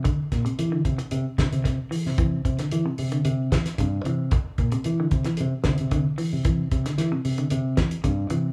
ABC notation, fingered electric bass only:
X:1
M:4/4
L:1/16
Q:1/4=113
K:Cmix
V:1 name="Fingered electric bass" clef=bass
z2 B,, z E,2 C, z C, z C, C,2 z2 C,- | C,2 C, z E, z C,2 C,2 z2 G,,2 C,2 | z2 B,, z E,2 C, z C, z C, C,2 z2 C,- | C,2 C, z E, z C,2 C,2 z2 G,,2 C,2 |]